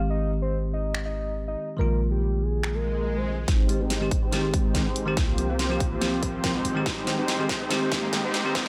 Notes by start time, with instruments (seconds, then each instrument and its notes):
Already playing: 808-style bass G#1, tine electric piano D#3 G#3 C4 G4
0.10 soft synth lead D#5
0.42 soft synth lead C5
0.73 soft synth lead D#5
0.94 finger snap
1.05 soft synth lead D#5
1.48 soft synth lead D#5
1.77 808-style bass A#1, tine electric piano D#3 G#3 A#3, soft synth lead A#4
1.81 tine electric piano F4
2.11 soft synth lead G4
2.42 soft synth lead G#4
2.63 finger snap, swell
2.74 soft synth lead A#4
3.17 soft synth lead C5
3.48 808-style bass G#1, supersaw synth G#3 C4 D#4 G4 C5, kick, snare, closed hi-hat, riser
3.68 tine electric piano D#3 G#3 C4 G4, closed hi-hat
3.80 supersaw synth G#3 C4 D#4 G4 C5
3.90 snare, closed hi-hat
4.00 tine electric piano D#3 G#3 C4 G4
4.11 kick, closed hi-hat
4.22 supersaw synth G#3 C4 D#4 G4 C5
4.31 tine electric piano D#3 G#3 C4 G4, snare, closed hi-hat
4.54 supersaw synth G#3 C4 D#4 G4 C5, kick, closed hi-hat
4.74 tine electric piano D#3 G#3 C4 G#4, kick, snare, closed hi-hat
4.86 supersaw synth G#3 C4 D#4 G4 C5
4.96 closed hi-hat
5.06 tine electric piano D#3 G#3 C4 G4
5.17 808-style bass C2, supersaw synth A#3 C4 F4 G4 C5, kick, snare, closed hi-hat
5.37 tine electric piano F3 A#3 C4 G4, closed hi-hat
5.49 supersaw synth A#3 C4 F4 G4 C5
5.59 snare, closed hi-hat
5.69 tine electric piano F3 A#3 C4 G4
5.80 kick, closed hi-hat
5.91 supersaw synth A#3 C4 F4 G4 C5
6.01 tine electric piano F3 A#3 C4 G4, snare, closed hi-hat
6.23 supersaw synth A#3 C4 F4 G4 C5, kick, closed hi-hat
6.43 tine electric piano F3 A#3 C4 A#4, kick, snare, closed hi-hat
6.55 supersaw synth G#3 C4 D#4 G4 C5
6.65 808-style bass G#1, closed hi-hat
6.75 tine electric piano D#3 G#3 C4 G4
6.86 supersaw synth G#3 C4 D#4 G4 C5, kick, snare, closed hi-hat
7.06 tine electric piano D#3 G#3 C4 G4, snare, closed hi-hat
7.18 supersaw synth G#3 C4 D#4 G4 C5
7.28 snare, closed hi-hat
7.38 tine electric piano D#3 G#3 C4 G4
7.49 kick, snare, closed hi-hat
7.60 supersaw synth G#3 C4 D#4 G4 C5
7.70 tine electric piano D#3 G#3 C4 G4, snare, closed hi-hat
7.92 supersaw synth G#3 C4 D#4 G4 C5, kick, snare, closed hi-hat
8.12 tine electric piano D#3 G#3 C4 G#4, kick, snare, closed hi-hat
8.24 supersaw synth G#3 C4 D#4 G4 C5
8.34 snare, closed hi-hat
8.44 tine electric piano D#3 G#3 C4 G4
8.55 808-style bass A#1, supersaw synth G#3 A#3 D#4 F4 A#4, kick, snare, closed hi-hat